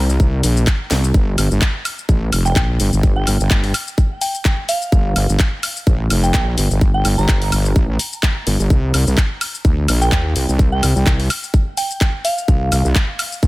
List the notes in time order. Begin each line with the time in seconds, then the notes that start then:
Already playing: C2
0.09 shaker
0.20 C2, kick, shaker
0.43 A#1, open hi-hat, shaker
0.57 shaker
0.67 kick, clap, shaker
0.91 C2, snare, open hi-hat, shaker
1.04 shaker
1.14 G1, kick, shaker
1.38 G1, open hi-hat, high woodblock, shaker
1.51 G1, shaker
1.62 kick, clap, shaker
1.85 open hi-hat, high woodblock, shaker
1.98 shaker
2.09 A1, kick, shaker
2.32 F1, open hi-hat, high woodblock, shaker
2.45 G5, shaker
2.56 A#1 G5, kick, clap, shaker
2.80 G1, open hi-hat, shaker
2.93 G1, shaker
3.03 kick, shaker
3.16 G5
3.27 G1, open hi-hat, high woodblock, shaker
3.40 G1, shaker
3.51 G1, kick, clap, shaker
3.64 open hi-hat
3.74 open hi-hat, high woodblock, shaker
3.87 shaker
3.98 kick, shaker
4.21 G5, open hi-hat, shaker
4.35 shaker
4.45 kick, clap, shaker
4.69 F5, open hi-hat, shaker
4.82 shaker
4.92 G1, kick, shaker
5.16 G1, open hi-hat, high woodblock, shaker
5.29 G1, shaker
5.39 kick, clap, shaker
5.63 open hi-hat, high woodblock, shaker
5.76 shaker
5.87 A1, kick, shaker
6.10 F1, open hi-hat, high woodblock, shaker
6.23 G5, shaker
6.34 A#1 G5, kick, clap, shaker
6.58 G1, open hi-hat, shaker
6.71 G1, shaker
6.81 kick, shaker
6.94 G5
7.05 G1, open hi-hat, high woodblock, shaker
7.18 G1 A#5, shaker
7.29 G1, kick, clap, shaker
7.42 open hi-hat
7.52 G1, open hi-hat, high woodblock, shaker
7.65 shaker
7.76 A1, kick, shaker
7.99 open hi-hat, shaker
8.13 shaker
8.23 kick, clap, shaker
8.47 G1, open hi-hat, shaker
8.60 G1, shaker
8.70 C2, kick, shaker
8.94 C2, open hi-hat, high woodblock, shaker
9.07 C2, shaker
9.18 kick, clap, shaker
9.41 open hi-hat, high woodblock, shaker
9.54 shaker
9.65 D2, kick, shaker
9.88 A#1, open hi-hat, high woodblock, shaker
10.01 G5, shaker
10.12 D#2 G5, kick, clap, shaker
10.36 C2, open hi-hat, shaker
10.49 C2, shaker
10.59 kick, shaker
10.72 G5
10.83 C2, open hi-hat, high woodblock, shaker
10.96 C2, shaker
11.07 C2, kick, clap, shaker
11.20 open hi-hat
11.30 open hi-hat, high woodblock, shaker
11.43 shaker
11.54 kick, shaker
11.77 G5, open hi-hat, shaker
11.91 shaker
12.01 kick, clap, shaker
12.25 F5, open hi-hat, shaker
12.38 shaker
12.48 C2, kick, shaker
12.72 C2, open hi-hat, high woodblock, shaker
12.85 C2, shaker
12.95 kick, clap, shaker
13.19 open hi-hat, high woodblock, shaker
13.32 shaker
13.43 D2, kick, shaker